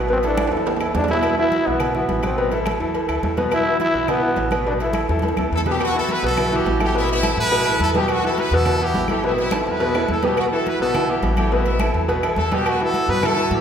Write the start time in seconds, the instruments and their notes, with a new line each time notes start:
Already playing: upright bass A1
0.08 grand piano B2 B3 B4, cowbell, high conga
0.13 trombone C4
0.23 grand piano E3 E4 A4, trombone D4, cowbell, high conga, low agogo
0.37 cowbell, high conga, high timbale, low agogo, claves
0.47 upright bass E2, high timbale
0.52 grand piano E3 E4 A4, cowbell, high conga
0.57 high timbale
0.66 cowbell, high conga, low timbale, low agogo
0.76 low timbale, low agogo
0.81 grand piano E3 E4 A4, high conga, claves
0.94 upright bass E2, trombone D4, cowbell, high conga, low timbale
1.04 low timbale
1.08 grand piano B2 B3 B4, trombone E4, cowbell, high conga, low agogo
1.13 low timbale
1.23 cowbell, high conga, low agogo, claves
1.38 grand piano E3 E4 F#4, trombone E4, high conga
1.52 cowbell, high conga, low agogo
1.67 upright bass B1, grand piano E3 E4 F#4, trombone B3, high conga
1.80 cowbell, high conga, low conga, low agogo, claves
1.95 grand piano E3 E4 F#4, trombone B3, high conga, low conga
2.09 upright bass A1, cowbell, high conga, low agogo
2.23 grand piano B2 B3 B4, trombone C4, high conga, low agogo, claves
2.38 grand piano B2 B3 B4, cowbell, high conga
2.51 grand piano E3 E4 A4, cowbell, high conga, low agogo
2.66 cowbell, high conga, low agogo, claves
2.80 upright bass E2, grand piano E3 E4 A4, cowbell, high conga
2.94 cowbell, high conga, low agogo
3.08 upright bass D2, grand piano E3 E4 A4, high conga, low agogo, claves
3.23 upright bass E2, cowbell, high conga, low timbale
3.37 grand piano B2 B3 B4, cowbell, high conga, low agogo
3.51 trombone E4, cowbell, high conga, low agogo, claves
3.66 grand piano E3 E4 F#4, high conga
3.80 trombone E4, cowbell, high conga, low agogo
3.94 upright bass B1, grand piano E3 E4 F#4, high conga
4.08 trombone B3, cowbell, high conga, low conga, low agogo, claves
4.22 grand piano E3 E4 F#4, high conga
4.36 upright bass A1, cowbell, high conga, low timbale, low agogo
4.51 grand piano B2 B3 B4, high conga, low agogo, claves
4.65 grand piano B2 B3 B4, trombone D4, cowbell, high conga
4.80 grand piano E3 E4 A4, trombone E4, cowbell, high conga, low agogo
4.93 cowbell, high conga, low agogo, claves
5.08 upright bass E2, grand piano E3 E4 A4, cowbell, high bongo, high conga
5.19 high bongo, high conga, low agogo
5.24 cowbell
5.28 high bongo
5.37 upright bass D2, grand piano E3 E4 A4, low bongo, high conga, low agogo, claves
5.51 upright bass E2, horn section A4, cowbell
5.58 low bongo
5.66 grand piano B2 B3 B4, horn section G4, cowbell, low bongo, low conga, low agogo
5.76 low bongo, high conga
5.80 horn section B3 F#4, cowbell, low agogo, claves
5.95 grand piano E3 E4 F#4, horn section A4, high conga
6.09 horn section B4, cowbell, high conga, low agogo
6.23 upright bass B1, grand piano B2 B3 B4, horn section F#4, high conga
6.27 horn section A4
6.37 grand piano E3 E4 F#4, cowbell, high conga, low conga, low agogo, claves
6.52 grand piano E3 E4 F#4, horn section B3 G4, high conga, low conga
6.66 upright bass A1, cowbell, high conga, low timbale, low agogo
6.80 grand piano E3 E4 A4, horn section G4, high conga, low agogo, claves
6.95 grand piano B2 B3 B4, horn section B3 C4 E4, cowbell, high conga
7.08 horn section B3 C4 E4, cowbell, high conga, low agogo
7.23 grand piano E3 E4 A4, cowbell, high conga, low agogo, claves
7.37 upright bass A2, horn section E4 B4, cowbell, high conga
7.51 grand piano B2 B3 B4, cowbell, high conga, low agogo
7.66 grand piano E3 E4 A4, high conga, low agogo, claves
7.80 upright bass E2, horn section A4, cowbell, high conga
7.94 grand piano B2 B3 B4, horn section G4, cowbell, high conga, low agogo
8.08 horn section B3 F#4, cowbell, low agogo, claves
8.24 grand piano E3 E4 F#4, horn section A4, high conga
8.37 horn section B4, cowbell, high conga, low agogo
8.51 upright bass E2, grand piano B2 B3 B4, horn section F#4 A4, high conga
8.65 grand piano E3 E4 F#4, cowbell, high conga, low conga, low agogo, claves
8.80 grand piano E3 E4 F#4, horn section B3 G4, high conga
8.94 upright bass A1, cowbell, high conga, low timbale, low agogo
9.08 grand piano E3 E4 A4, horn section G4, high conga, low agogo, claves
9.23 grand piano B2 B3 B4, horn section B3 C4 E4, cowbell, high conga
9.37 horn section B3 C4 E4, cowbell, high conga, low agogo
9.51 grand piano E3 E4 A4, cowbell, high conga, high timbale, low agogo, claves
9.66 upright bass E2, horn section E4 B4, cowbell, high conga
9.80 grand piano B2 B3 B4, cowbell, high conga, low timbale, low agogo
9.95 grand piano E3 E4 A4, high conga, low timbale, low agogo, claves
10.08 upright bass E2, horn section A4, cowbell, high conga
10.22 grand piano B2 B3 B4, horn section G4, cowbell, high conga, low timbale, low agogo
10.37 horn section B3 F#4, cowbell, high conga, low agogo, claves
10.52 grand piano E3 E4 F#4, horn section A4, high conga
10.66 horn section B4, cowbell, high conga, low agogo
10.80 upright bass B1, grand piano B2 B3 B4, horn section F#4 A4, high conga
10.94 grand piano E3 E4 F#4, cowbell, high conga, low conga, low agogo, claves
11.08 grand piano E3 E4 F#4, horn section B3 G4, high conga
11.23 upright bass A1, cowbell, high conga, low timbale, low agogo
11.37 grand piano E3 E4 A4, horn section G4, high conga, low agogo, claves
11.51 grand piano B2 B3 B4, horn section B3 C4 E4, cowbell, high conga
11.66 horn section B3 C4 E4, cowbell, high conga, low agogo
11.79 grand piano E3 E4 A4, cowbell, high conga, low agogo, claves
11.94 upright bass E2, cowbell, high conga
12.08 grand piano B2 B3 B4, cowbell, high conga, low agogo
12.23 grand piano E3 E4 A4, high conga, low agogo, claves
12.36 upright bass E2, horn section A4, cowbell, high conga, low timbale
12.51 grand piano B2 B3 B4, horn section G4, cowbell, high conga, low agogo
12.66 horn section B3 F#4, cowbell, high conga, low agogo, claves
12.80 grand piano E3 E4 F#4, horn section F#4 A4, high conga
12.94 cowbell, high conga, low agogo
13.08 upright bass G2, grand piano B2 B3 B4, horn section B4, high conga
13.22 grand piano E3 E4 F#4, horn section F#4 A4, cowbell, high conga, low conga, low agogo, claves
13.36 grand piano E3 E4 F#4, high conga
13.51 upright bass A2, horn section B3 G4, cowbell, high conga, low agogo